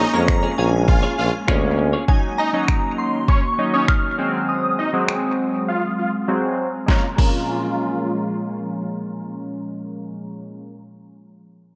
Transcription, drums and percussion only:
0, 0, Header, 1, 2, 480
1, 0, Start_track
1, 0, Key_signature, -5, "minor"
1, 0, Tempo, 600000
1, 1666, Time_signature, 4, 2, 24, 8
1, 9402, End_track
2, 0, Start_track
2, 0, Title_t, "Drums"
2, 227, Note_on_c, 9, 26, 97
2, 227, Note_on_c, 9, 36, 100
2, 307, Note_off_c, 9, 26, 0
2, 307, Note_off_c, 9, 36, 0
2, 706, Note_on_c, 9, 36, 109
2, 786, Note_off_c, 9, 36, 0
2, 1186, Note_on_c, 9, 26, 107
2, 1186, Note_on_c, 9, 36, 96
2, 1266, Note_off_c, 9, 26, 0
2, 1266, Note_off_c, 9, 36, 0
2, 1667, Note_on_c, 9, 36, 111
2, 1747, Note_off_c, 9, 36, 0
2, 2147, Note_on_c, 9, 26, 94
2, 2148, Note_on_c, 9, 36, 92
2, 2227, Note_off_c, 9, 26, 0
2, 2228, Note_off_c, 9, 36, 0
2, 2627, Note_on_c, 9, 36, 105
2, 2707, Note_off_c, 9, 36, 0
2, 3107, Note_on_c, 9, 26, 109
2, 3107, Note_on_c, 9, 36, 96
2, 3187, Note_off_c, 9, 26, 0
2, 3187, Note_off_c, 9, 36, 0
2, 4068, Note_on_c, 9, 26, 99
2, 4148, Note_off_c, 9, 26, 0
2, 5507, Note_on_c, 9, 36, 97
2, 5507, Note_on_c, 9, 38, 79
2, 5587, Note_off_c, 9, 36, 0
2, 5587, Note_off_c, 9, 38, 0
2, 5747, Note_on_c, 9, 36, 97
2, 5747, Note_on_c, 9, 49, 83
2, 5827, Note_off_c, 9, 36, 0
2, 5827, Note_off_c, 9, 49, 0
2, 9402, End_track
0, 0, End_of_file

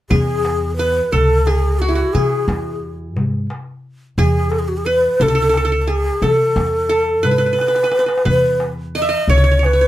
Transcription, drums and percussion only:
0, 0, Header, 1, 2, 480
1, 0, Start_track
1, 0, Tempo, 679502
1, 74, Time_signature, 6, 3, 24, 8
1, 6976, End_track
2, 0, Start_track
2, 0, Title_t, "Darbuka"
2, 72, Note_on_c, 9, 64, 89
2, 143, Note_off_c, 9, 64, 0
2, 316, Note_on_c, 9, 63, 70
2, 387, Note_off_c, 9, 63, 0
2, 443, Note_on_c, 9, 62, 24
2, 513, Note_off_c, 9, 62, 0
2, 797, Note_on_c, 9, 64, 79
2, 867, Note_off_c, 9, 64, 0
2, 1037, Note_on_c, 9, 63, 63
2, 1108, Note_off_c, 9, 63, 0
2, 1514, Note_on_c, 9, 64, 74
2, 1585, Note_off_c, 9, 64, 0
2, 1756, Note_on_c, 9, 63, 74
2, 1827, Note_off_c, 9, 63, 0
2, 1874, Note_on_c, 9, 62, 23
2, 1945, Note_off_c, 9, 62, 0
2, 2235, Note_on_c, 9, 64, 78
2, 2306, Note_off_c, 9, 64, 0
2, 2474, Note_on_c, 9, 63, 57
2, 2545, Note_off_c, 9, 63, 0
2, 2952, Note_on_c, 9, 64, 84
2, 3023, Note_off_c, 9, 64, 0
2, 3190, Note_on_c, 9, 63, 64
2, 3261, Note_off_c, 9, 63, 0
2, 3317, Note_on_c, 9, 62, 22
2, 3388, Note_off_c, 9, 62, 0
2, 3671, Note_on_c, 9, 64, 91
2, 3742, Note_off_c, 9, 64, 0
2, 3911, Note_on_c, 9, 63, 63
2, 3981, Note_off_c, 9, 63, 0
2, 4396, Note_on_c, 9, 64, 91
2, 4466, Note_off_c, 9, 64, 0
2, 4637, Note_on_c, 9, 63, 67
2, 4708, Note_off_c, 9, 63, 0
2, 5119, Note_on_c, 9, 64, 79
2, 5190, Note_off_c, 9, 64, 0
2, 5359, Note_on_c, 9, 63, 47
2, 5419, Note_on_c, 9, 62, 57
2, 5430, Note_off_c, 9, 63, 0
2, 5473, Note_on_c, 9, 63, 52
2, 5489, Note_off_c, 9, 62, 0
2, 5533, Note_on_c, 9, 62, 65
2, 5544, Note_off_c, 9, 63, 0
2, 5592, Note_on_c, 9, 63, 61
2, 5603, Note_off_c, 9, 62, 0
2, 5651, Note_on_c, 9, 62, 68
2, 5662, Note_off_c, 9, 63, 0
2, 5711, Note_on_c, 9, 63, 71
2, 5722, Note_off_c, 9, 62, 0
2, 5775, Note_on_c, 9, 62, 80
2, 5782, Note_off_c, 9, 63, 0
2, 5828, Note_on_c, 9, 64, 83
2, 5846, Note_off_c, 9, 62, 0
2, 5899, Note_off_c, 9, 64, 0
2, 6075, Note_on_c, 9, 63, 67
2, 6146, Note_off_c, 9, 63, 0
2, 6198, Note_on_c, 9, 62, 24
2, 6268, Note_off_c, 9, 62, 0
2, 6562, Note_on_c, 9, 64, 73
2, 6633, Note_off_c, 9, 64, 0
2, 6803, Note_on_c, 9, 63, 55
2, 6873, Note_off_c, 9, 63, 0
2, 6976, End_track
0, 0, End_of_file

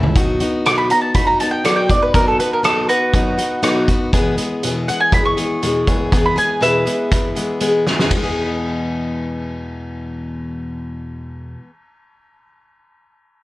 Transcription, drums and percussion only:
0, 0, Header, 1, 2, 480
1, 0, Start_track
1, 0, Key_signature, 4, "major"
1, 0, Tempo, 497100
1, 157, Time_signature, 4, 2, 24, 8
1, 12969, End_track
2, 0, Start_track
2, 0, Title_t, "Drums"
2, 31, Note_on_c, 9, 43, 71
2, 128, Note_off_c, 9, 43, 0
2, 149, Note_on_c, 9, 42, 73
2, 151, Note_on_c, 9, 36, 105
2, 245, Note_off_c, 9, 42, 0
2, 248, Note_off_c, 9, 36, 0
2, 388, Note_on_c, 9, 42, 52
2, 484, Note_off_c, 9, 42, 0
2, 634, Note_on_c, 9, 42, 68
2, 643, Note_on_c, 9, 37, 86
2, 730, Note_off_c, 9, 42, 0
2, 739, Note_off_c, 9, 37, 0
2, 869, Note_on_c, 9, 42, 52
2, 965, Note_off_c, 9, 42, 0
2, 1105, Note_on_c, 9, 42, 72
2, 1108, Note_on_c, 9, 36, 98
2, 1202, Note_off_c, 9, 42, 0
2, 1205, Note_off_c, 9, 36, 0
2, 1350, Note_on_c, 9, 42, 53
2, 1447, Note_off_c, 9, 42, 0
2, 1589, Note_on_c, 9, 42, 74
2, 1597, Note_on_c, 9, 37, 93
2, 1685, Note_off_c, 9, 42, 0
2, 1694, Note_off_c, 9, 37, 0
2, 1829, Note_on_c, 9, 36, 73
2, 1835, Note_on_c, 9, 42, 52
2, 1926, Note_off_c, 9, 36, 0
2, 1931, Note_off_c, 9, 42, 0
2, 2068, Note_on_c, 9, 36, 98
2, 2071, Note_on_c, 9, 42, 76
2, 2165, Note_off_c, 9, 36, 0
2, 2168, Note_off_c, 9, 42, 0
2, 2314, Note_on_c, 9, 42, 51
2, 2411, Note_off_c, 9, 42, 0
2, 2550, Note_on_c, 9, 42, 69
2, 2559, Note_on_c, 9, 37, 97
2, 2647, Note_off_c, 9, 42, 0
2, 2656, Note_off_c, 9, 37, 0
2, 2792, Note_on_c, 9, 42, 54
2, 2888, Note_off_c, 9, 42, 0
2, 3028, Note_on_c, 9, 36, 96
2, 3029, Note_on_c, 9, 42, 81
2, 3124, Note_off_c, 9, 36, 0
2, 3125, Note_off_c, 9, 42, 0
2, 3268, Note_on_c, 9, 42, 56
2, 3365, Note_off_c, 9, 42, 0
2, 3505, Note_on_c, 9, 42, 76
2, 3513, Note_on_c, 9, 37, 92
2, 3601, Note_off_c, 9, 42, 0
2, 3610, Note_off_c, 9, 37, 0
2, 3747, Note_on_c, 9, 36, 74
2, 3747, Note_on_c, 9, 42, 52
2, 3843, Note_off_c, 9, 42, 0
2, 3844, Note_off_c, 9, 36, 0
2, 3988, Note_on_c, 9, 36, 101
2, 3991, Note_on_c, 9, 42, 76
2, 4085, Note_off_c, 9, 36, 0
2, 4088, Note_off_c, 9, 42, 0
2, 4226, Note_on_c, 9, 42, 58
2, 4323, Note_off_c, 9, 42, 0
2, 4472, Note_on_c, 9, 42, 72
2, 4568, Note_off_c, 9, 42, 0
2, 4718, Note_on_c, 9, 42, 52
2, 4815, Note_off_c, 9, 42, 0
2, 4949, Note_on_c, 9, 36, 92
2, 4951, Note_on_c, 9, 42, 68
2, 5045, Note_off_c, 9, 36, 0
2, 5048, Note_off_c, 9, 42, 0
2, 5193, Note_on_c, 9, 42, 49
2, 5289, Note_off_c, 9, 42, 0
2, 5433, Note_on_c, 9, 42, 66
2, 5529, Note_off_c, 9, 42, 0
2, 5670, Note_on_c, 9, 36, 69
2, 5672, Note_on_c, 9, 42, 50
2, 5766, Note_off_c, 9, 36, 0
2, 5768, Note_off_c, 9, 42, 0
2, 5911, Note_on_c, 9, 36, 98
2, 5914, Note_on_c, 9, 42, 68
2, 6007, Note_off_c, 9, 36, 0
2, 6010, Note_off_c, 9, 42, 0
2, 6156, Note_on_c, 9, 42, 48
2, 6253, Note_off_c, 9, 42, 0
2, 6398, Note_on_c, 9, 42, 69
2, 6494, Note_off_c, 9, 42, 0
2, 6632, Note_on_c, 9, 42, 53
2, 6728, Note_off_c, 9, 42, 0
2, 6872, Note_on_c, 9, 36, 93
2, 6872, Note_on_c, 9, 42, 75
2, 6968, Note_off_c, 9, 36, 0
2, 6968, Note_off_c, 9, 42, 0
2, 7109, Note_on_c, 9, 42, 53
2, 7206, Note_off_c, 9, 42, 0
2, 7344, Note_on_c, 9, 42, 64
2, 7440, Note_off_c, 9, 42, 0
2, 7596, Note_on_c, 9, 38, 46
2, 7693, Note_off_c, 9, 38, 0
2, 7719, Note_on_c, 9, 38, 63
2, 7816, Note_off_c, 9, 38, 0
2, 7828, Note_on_c, 9, 36, 59
2, 7829, Note_on_c, 9, 51, 74
2, 7925, Note_off_c, 9, 36, 0
2, 7926, Note_off_c, 9, 51, 0
2, 12969, End_track
0, 0, End_of_file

